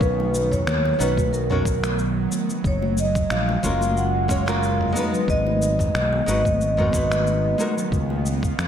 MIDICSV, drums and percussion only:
0, 0, Header, 1, 2, 480
1, 0, Start_track
1, 0, Key_signature, 6, "major"
1, 0, Tempo, 659341
1, 9, Time_signature, 4, 2, 24, 8
1, 6317, End_track
2, 0, Start_track
2, 0, Title_t, "Drums"
2, 5, Note_on_c, 9, 36, 123
2, 15, Note_on_c, 9, 82, 34
2, 78, Note_off_c, 9, 36, 0
2, 88, Note_off_c, 9, 82, 0
2, 143, Note_on_c, 9, 64, 74
2, 145, Note_on_c, 9, 63, 87
2, 216, Note_off_c, 9, 64, 0
2, 218, Note_off_c, 9, 63, 0
2, 252, Note_on_c, 9, 82, 74
2, 325, Note_off_c, 9, 82, 0
2, 375, Note_on_c, 9, 36, 60
2, 380, Note_on_c, 9, 45, 55
2, 383, Note_on_c, 9, 82, 42
2, 387, Note_on_c, 9, 62, 33
2, 448, Note_off_c, 9, 36, 0
2, 453, Note_off_c, 9, 45, 0
2, 456, Note_off_c, 9, 82, 0
2, 460, Note_off_c, 9, 62, 0
2, 490, Note_on_c, 9, 26, 76
2, 493, Note_on_c, 9, 82, 34
2, 494, Note_on_c, 9, 63, 67
2, 563, Note_off_c, 9, 26, 0
2, 565, Note_off_c, 9, 82, 0
2, 567, Note_off_c, 9, 63, 0
2, 621, Note_on_c, 9, 62, 62
2, 694, Note_off_c, 9, 62, 0
2, 733, Note_on_c, 9, 82, 86
2, 806, Note_off_c, 9, 82, 0
2, 855, Note_on_c, 9, 36, 104
2, 858, Note_on_c, 9, 63, 89
2, 862, Note_on_c, 9, 82, 44
2, 928, Note_off_c, 9, 36, 0
2, 931, Note_off_c, 9, 63, 0
2, 935, Note_off_c, 9, 82, 0
2, 972, Note_on_c, 9, 82, 34
2, 1045, Note_off_c, 9, 82, 0
2, 1098, Note_on_c, 9, 45, 76
2, 1171, Note_off_c, 9, 45, 0
2, 1205, Note_on_c, 9, 36, 103
2, 1211, Note_on_c, 9, 82, 81
2, 1277, Note_off_c, 9, 36, 0
2, 1284, Note_off_c, 9, 82, 0
2, 1337, Note_on_c, 9, 26, 70
2, 1339, Note_on_c, 9, 63, 64
2, 1339, Note_on_c, 9, 82, 43
2, 1409, Note_off_c, 9, 26, 0
2, 1412, Note_off_c, 9, 63, 0
2, 1412, Note_off_c, 9, 82, 0
2, 1448, Note_on_c, 9, 82, 31
2, 1521, Note_off_c, 9, 82, 0
2, 1689, Note_on_c, 9, 82, 78
2, 1693, Note_on_c, 9, 63, 84
2, 1761, Note_off_c, 9, 82, 0
2, 1766, Note_off_c, 9, 63, 0
2, 1816, Note_on_c, 9, 64, 67
2, 1820, Note_on_c, 9, 82, 45
2, 1888, Note_off_c, 9, 64, 0
2, 1892, Note_off_c, 9, 82, 0
2, 1924, Note_on_c, 9, 36, 123
2, 1929, Note_on_c, 9, 82, 34
2, 1997, Note_off_c, 9, 36, 0
2, 2002, Note_off_c, 9, 82, 0
2, 2055, Note_on_c, 9, 63, 102
2, 2128, Note_off_c, 9, 63, 0
2, 2168, Note_on_c, 9, 82, 76
2, 2240, Note_off_c, 9, 82, 0
2, 2296, Note_on_c, 9, 36, 105
2, 2299, Note_on_c, 9, 82, 44
2, 2368, Note_off_c, 9, 36, 0
2, 2371, Note_off_c, 9, 82, 0
2, 2405, Note_on_c, 9, 26, 76
2, 2408, Note_on_c, 9, 82, 33
2, 2413, Note_on_c, 9, 63, 54
2, 2478, Note_off_c, 9, 26, 0
2, 2481, Note_off_c, 9, 82, 0
2, 2486, Note_off_c, 9, 63, 0
2, 2538, Note_on_c, 9, 62, 58
2, 2611, Note_off_c, 9, 62, 0
2, 2645, Note_on_c, 9, 36, 59
2, 2648, Note_on_c, 9, 82, 82
2, 2717, Note_off_c, 9, 36, 0
2, 2721, Note_off_c, 9, 82, 0
2, 2774, Note_on_c, 9, 63, 90
2, 2783, Note_on_c, 9, 82, 45
2, 2847, Note_off_c, 9, 63, 0
2, 2855, Note_off_c, 9, 82, 0
2, 2892, Note_on_c, 9, 82, 32
2, 2964, Note_off_c, 9, 82, 0
2, 3125, Note_on_c, 9, 36, 97
2, 3127, Note_on_c, 9, 62, 65
2, 3131, Note_on_c, 9, 82, 75
2, 3198, Note_off_c, 9, 36, 0
2, 3200, Note_off_c, 9, 62, 0
2, 3204, Note_off_c, 9, 82, 0
2, 3260, Note_on_c, 9, 26, 73
2, 3263, Note_on_c, 9, 63, 59
2, 3263, Note_on_c, 9, 82, 42
2, 3333, Note_off_c, 9, 26, 0
2, 3335, Note_off_c, 9, 63, 0
2, 3336, Note_off_c, 9, 82, 0
2, 3372, Note_on_c, 9, 82, 32
2, 3445, Note_off_c, 9, 82, 0
2, 3501, Note_on_c, 9, 45, 71
2, 3573, Note_off_c, 9, 45, 0
2, 3612, Note_on_c, 9, 63, 89
2, 3612, Note_on_c, 9, 82, 76
2, 3685, Note_off_c, 9, 63, 0
2, 3685, Note_off_c, 9, 82, 0
2, 3739, Note_on_c, 9, 64, 73
2, 3744, Note_on_c, 9, 82, 41
2, 3811, Note_off_c, 9, 64, 0
2, 3817, Note_off_c, 9, 82, 0
2, 3844, Note_on_c, 9, 36, 117
2, 3853, Note_on_c, 9, 82, 33
2, 3917, Note_off_c, 9, 36, 0
2, 3925, Note_off_c, 9, 82, 0
2, 3979, Note_on_c, 9, 63, 82
2, 4052, Note_off_c, 9, 63, 0
2, 4092, Note_on_c, 9, 82, 71
2, 4165, Note_off_c, 9, 82, 0
2, 4216, Note_on_c, 9, 36, 64
2, 4218, Note_on_c, 9, 62, 42
2, 4222, Note_on_c, 9, 45, 57
2, 4225, Note_on_c, 9, 82, 42
2, 4289, Note_off_c, 9, 36, 0
2, 4290, Note_off_c, 9, 62, 0
2, 4295, Note_off_c, 9, 45, 0
2, 4297, Note_off_c, 9, 82, 0
2, 4328, Note_on_c, 9, 63, 66
2, 4331, Note_on_c, 9, 26, 76
2, 4334, Note_on_c, 9, 82, 32
2, 4401, Note_off_c, 9, 63, 0
2, 4404, Note_off_c, 9, 26, 0
2, 4407, Note_off_c, 9, 82, 0
2, 4460, Note_on_c, 9, 62, 58
2, 4533, Note_off_c, 9, 62, 0
2, 4574, Note_on_c, 9, 82, 82
2, 4647, Note_off_c, 9, 82, 0
2, 4697, Note_on_c, 9, 36, 99
2, 4700, Note_on_c, 9, 63, 84
2, 4704, Note_on_c, 9, 82, 43
2, 4770, Note_off_c, 9, 36, 0
2, 4772, Note_off_c, 9, 63, 0
2, 4777, Note_off_c, 9, 82, 0
2, 4813, Note_on_c, 9, 82, 32
2, 4885, Note_off_c, 9, 82, 0
2, 4939, Note_on_c, 9, 45, 79
2, 5012, Note_off_c, 9, 45, 0
2, 5046, Note_on_c, 9, 36, 99
2, 5052, Note_on_c, 9, 82, 74
2, 5119, Note_off_c, 9, 36, 0
2, 5125, Note_off_c, 9, 82, 0
2, 5180, Note_on_c, 9, 26, 70
2, 5182, Note_on_c, 9, 63, 65
2, 5183, Note_on_c, 9, 82, 39
2, 5253, Note_off_c, 9, 26, 0
2, 5255, Note_off_c, 9, 63, 0
2, 5256, Note_off_c, 9, 82, 0
2, 5293, Note_on_c, 9, 82, 30
2, 5366, Note_off_c, 9, 82, 0
2, 5523, Note_on_c, 9, 63, 94
2, 5532, Note_on_c, 9, 82, 71
2, 5595, Note_off_c, 9, 63, 0
2, 5605, Note_off_c, 9, 82, 0
2, 5661, Note_on_c, 9, 64, 74
2, 5665, Note_on_c, 9, 82, 43
2, 5734, Note_off_c, 9, 64, 0
2, 5738, Note_off_c, 9, 82, 0
2, 5766, Note_on_c, 9, 36, 114
2, 5774, Note_on_c, 9, 82, 32
2, 5839, Note_off_c, 9, 36, 0
2, 5846, Note_off_c, 9, 82, 0
2, 5898, Note_on_c, 9, 63, 86
2, 5971, Note_off_c, 9, 63, 0
2, 6014, Note_on_c, 9, 82, 70
2, 6087, Note_off_c, 9, 82, 0
2, 6136, Note_on_c, 9, 36, 99
2, 6145, Note_on_c, 9, 82, 42
2, 6209, Note_off_c, 9, 36, 0
2, 6217, Note_off_c, 9, 82, 0
2, 6253, Note_on_c, 9, 26, 76
2, 6255, Note_on_c, 9, 82, 32
2, 6259, Note_on_c, 9, 63, 52
2, 6317, Note_off_c, 9, 26, 0
2, 6317, Note_off_c, 9, 63, 0
2, 6317, Note_off_c, 9, 82, 0
2, 6317, End_track
0, 0, End_of_file